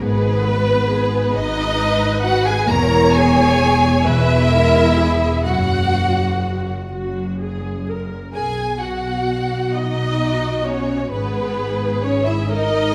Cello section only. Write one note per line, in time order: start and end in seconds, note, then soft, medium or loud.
0.00 1.18 G#2 loud
1.34 2.52 G#2 loud
2.67 3.89 E2 loud
4.05 5.28 E2 loud
5.45 6.73 F#2 loud
6.90 8.19 F#2 medium
8.36 11.08 B2 medium
11.12 12.95 G#2 medium